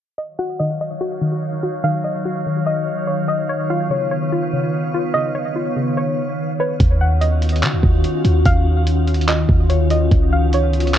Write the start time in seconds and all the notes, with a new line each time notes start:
0.18 D#3 F#3 C#5 D#5 F5
0.39 F#4 F#5
0.59 D#3 D#5
0.81 D#5
1.01 F#4
1.21 D#3
1.63 F#4
1.84 D#3 F5
2.04 D#5
2.25 F#4
2.46 D#3
2.66 D#5
3.07 C#5
3.28 D#5
3.49 B3 C#5
3.70 F4 F5
3.90 C#3 C#5
4.11 C#5
4.32 F4
4.53 C#3
4.94 F4
5.14 C#3 D#5
5.35 C#5
5.56 F4
5.76 C#3
5.97 C#5
6.60 B4 C#5
6.80 D#2 D#3 C#4 F4 F#4, kick, closed hi-hat
7.01 F#5
7.21 D#5, closed hi-hat
7.42 closed hi-hat
7.49 closed hi-hat
7.56 closed hi-hat
7.63 D#3, clap, closed hi-hat
7.73 D#2
7.83 D#2, kick
8.04 closed hi-hat
8.25 D#2, closed hi-hat
8.46 D#2 F5, kick, closed hi-hat
8.87 closed hi-hat
9.08 closed hi-hat
9.15 closed hi-hat
9.22 closed hi-hat
9.28 D#5, clap, closed hi-hat
9.49 D#2, kick
9.70 C#5, closed hi-hat
9.90 D#5, closed hi-hat
10.11 C#2 B3 F4, kick, closed hi-hat
10.32 F5
10.53 C#5, closed hi-hat
10.73 closed hi-hat
10.80 closed hi-hat
10.87 closed hi-hat
10.94 clap, closed hi-hat